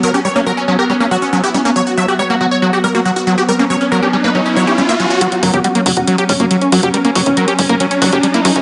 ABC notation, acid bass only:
X:1
M:4/4
L:1/16
Q:1/4=139
K:F#
V:1 name="Acid bass" clef=bass
F, =G =G, A, F, z F, G G, A, F, z F, G G, A, | F, z F, =G =G, A, F, z F, G G, A, F, z F, G | =G, A, F, z F, =G G, A, F, z F, G G, A, F, z | F, z F, =G =G, A, F, z F, G G, A, F, z F, G |
=G, A, F, z F, =G G, A, F, z F, G G, A, F, z |]